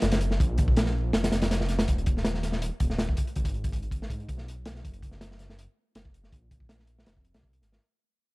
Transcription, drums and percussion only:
0.02 snare loud
0.02 closed hi-hat medium
0.12 snare loud
0.12 closed hi-hat medium
0.21 closed hi-hat medium
0.31 snare soft
0.40 kick medium
0.40 closed hi-hat medium
0.58 kick loud
0.58 closed hi-hat medium
0.68 kick loud
0.77 snare loud
0.77 closed hi-hat medium
0.86 snare medium
1.13 snare medium
1.13 closed hi-hat medium
1.24 snare loud
1.24 closed hi-hat medium
1.32 snare medium
1.32 closed hi-hat medium
1.42 snare loud
1.42 closed hi-hat medium
1.51 snare medium
1.51 closed hi-hat medium
1.61 snare medium
1.69 snare soft
1.69 closed hi-hat medium
1.79 snare loud
1.79 closed hi-hat medium
1.88 kick medium
1.88 closed hi-hat medium
1.98 closed hi-hat soft
2.06 kick loud
2.06 closed hi-hat medium
2.17 snare soft
2.24 snare loud
2.24 closed hi-hat medium
2.34 snare medium
2.43 snare soft
2.43 closed hi-hat medium
2.52 snare soft
2.62 closed hi-hat medium
2.80 kick medium
2.80 closed hi-hat medium
2.90 snare soft
2.99 snare loud
2.99 closed hi-hat medium
3.09 kick medium
3.17 kick medium
3.17 closed hi-hat medium
3.27 closed hi-hat soft
3.36 kick medium
3.36 closed hi-hat medium
3.45 kick loud
3.45 closed hi-hat medium
3.54 closed hi-hat soft
3.64 kick medium
3.64 closed hi-hat medium
3.73 kick medium
3.73 closed hi-hat medium
3.83 closed hi-hat soft
3.91 kick medium
3.91 closed hi-hat medium
4.02 snare medium
4.10 kick medium
4.10 closed hi-hat medium
4.20 closed hi-hat soft
4.29 kick medium
4.29 closed hi-hat medium
4.38 snare soft
4.48 closed hi-hat medium
4.66 snare loud
4.66 closed hi-hat medium
4.75 snare soft
4.85 kick loud
4.85 closed hi-hat medium
4.94 closed hi-hat soft
5.03 kick medium
5.03 closed hi-hat medium
5.11 snare soft
5.21 snare loud
5.21 closed hi-hat medium
5.31 snare medium
5.39 snare soft
5.39 closed hi-hat medium
5.49 snare soft
5.59 closed hi-hat medium
5.95 snare loud
5.95 closed hi-hat medium
6.05 kick medium
6.14 closed hi-hat medium
6.24 snare soft
6.32 kick medium
6.32 closed hi-hat medium
6.51 kick medium
6.51 closed hi-hat medium
6.60 kick medium
6.69 snare loud
6.69 closed hi-hat medium
6.79 snare soft
6.87 closed hi-hat medium
6.99 snare medium
7.06 snare medium
7.06 closed hi-hat medium
7.17 kick medium
7.25 closed hi-hat soft
7.34 snare medium
7.34 closed hi-hat medium
7.43 kick medium
7.53 closed hi-hat medium
7.62 snare soft
7.62 closed hi-hat medium
7.72 snare soft

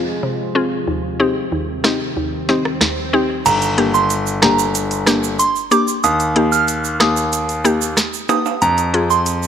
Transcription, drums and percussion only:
1.84 cross-stick medium
1.84 snare loud
2.49 snare medium
2.65 cross-stick medium
2.81 cross-stick medium
2.81 snare loud
3.46 closed hi-hat medium
3.46 crash medium
3.46 shaker medium
3.62 closed hi-hat medium
3.62 shaker soft
3.78 closed hi-hat medium
3.94 shaker medium
4.10 closed hi-hat medium
4.10 shaker medium
4.27 shaker soft
4.42 cross-stick medium
4.42 snare loud
4.42 closed hi-hat medium
4.59 shaker medium
4.75 closed hi-hat medium
4.75 shaker medium
4.91 closed hi-hat medium
4.91 shaker soft
5.06 cross-stick medium
5.06 snare loud
5.06 closed hi-hat medium
5.06 shaker medium
5.24 shaker medium
5.39 closed hi-hat medium
5.39 shaker medium
5.56 shaker medium
5.71 closed hi-hat medium
5.71 shaker medium
5.88 shaker medium
6.04 closed hi-hat medium
6.04 shaker medium
6.20 closed hi-hat medium
6.20 shaker soft
6.36 closed hi-hat medium
6.52 shaker medium
6.68 closed hi-hat medium
6.68 shaker medium
6.84 shaker soft
7.00 cross-stick medium
7.00 snare loud
7.00 closed hi-hat medium
7.17 shaker medium
7.33 closed hi-hat medium
7.33 shaker medium
7.49 closed hi-hat medium
7.49 shaker soft
7.65 closed hi-hat medium
7.65 shaker medium
7.82 shaker medium
7.97 cross-stick medium
7.97 snare loud
7.97 closed hi-hat medium
7.97 shaker medium
8.14 shaker medium
8.29 closed hi-hat medium
8.29 high timbale medium
8.29 shaker medium
8.46 high timbale medium
8.46 shaker medium
8.62 closed hi-hat medium
8.62 shaker medium
8.78 closed hi-hat soft
8.78 shaker medium
8.94 closed hi-hat medium
9.10 shaker medium
9.26 closed hi-hat medium
9.26 shaker medium
9.43 shaker medium

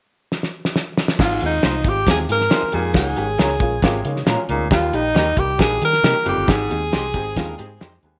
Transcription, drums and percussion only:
0.32 snare medium
0.43 snare soft
0.65 snare medium
0.76 snare medium
0.97 snare medium
1.08 snare medium
1.19 kick loud
1.19 snare loud
1.19 crash medium
1.41 closed hi-hat medium
1.63 snare loud
1.63 closed hi-hat medium
1.84 kick medium
1.84 closed hi-hat medium
2.07 kick medium
2.07 snare loud
2.07 closed hi-hat medium
2.29 closed hi-hat medium
2.41 snare soft
2.51 snare loud
2.51 closed hi-hat medium
2.72 closed hi-hat medium
2.94 kick loud
2.94 snare medium
2.94 closed hi-hat medium
3.16 closed hi-hat medium
3.39 snare loud
3.39 closed hi-hat medium
3.60 kick medium
3.60 closed hi-hat medium
3.82 kick medium
3.82 snare loud
3.82 closed hi-hat medium
4.05 closed hi-hat medium
4.16 snare soft
4.27 snare loud
4.27 closed hi-hat medium
4.49 closed hi-hat medium
4.71 kick loud
4.71 snare loud
4.71 closed hi-hat medium
4.93 closed hi-hat medium
5.16 snare medium
5.16 closed hi-hat medium
5.37 kick medium
5.37 closed hi-hat medium
5.59 kick medium
5.59 snare loud
5.59 closed hi-hat medium
5.82 closed hi-hat medium
5.93 snare soft
6.04 snare loud
6.04 closed hi-hat medium
6.26 closed hi-hat medium
6.48 kick loud
6.48 snare loud
6.48 closed hi-hat medium
6.71 closed hi-hat medium
6.93 snare medium
6.93 closed hi-hat medium
7.14 kick medium
7.14 closed hi-hat medium
7.36 kick medium
7.36 snare loud
7.36 closed hi-hat medium
7.59 closed hi-hat medium
7.81 snare loud
7.81 closed hi-hat medium
8.03 closed hi-hat medium

